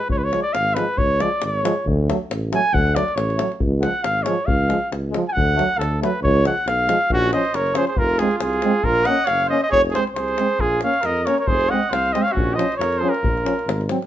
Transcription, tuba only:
0.09 0.33 C#2 medium
0.54 0.78 G#1 loud
0.97 1.21 C#2 loud
1.41 1.65 G#1 medium
1.86 2.10 D2 loud
2.29 2.53 A1 medium
2.73 2.97 D2 loud
3.16 3.40 A1 medium
3.60 3.84 C#2 loud
4.04 4.28 G#1 medium
4.48 4.72 C#2 loud
4.91 5.16 C#2 medium
5.36 5.59 D2 loud
5.77 6.02 D2 loud
6.22 6.46 C#2 loud
6.66 6.90 B1 medium
7.09 7.34 A#1 loud
7.53 7.77 F#1 medium
7.98 8.22 F1 loud
8.41 8.65 C2 medium
8.84 9.08 A#1 loud
9.28 9.52 F#1 medium
9.71 9.95 F1 loud
10.15 10.39 C2 medium
10.59 10.83 A#1 medium
11.04 11.28 F2 medium
11.47 11.71 F1 loud
11.91 12.15 C2 medium
12.35 12.59 A#1 loud
12.79 13.03 F2 medium
13.22 13.46 A#1 medium
13.66 13.90 G#1 loud

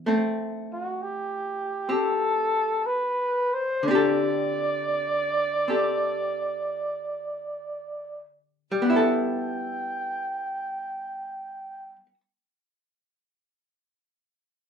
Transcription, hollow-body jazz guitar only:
0.06 3.86 A3 soft
0.06 1.88 C4 soft
1.89 3.85 C4 soft
1.89 3.85 G4 soft
3.83 8.76 D3 soft
3.88 5.67 C4 medium
3.88 5.68 G4 medium
3.95 5.69 A4 medium
5.68 8.77 C4 soft
5.68 8.78 G4 soft
5.68 8.78 A4 soft
8.72 11.96 G3 soft
8.82 12.06 B3 medium
8.90 12.14 E4 medium
8.96 12.20 A4 medium

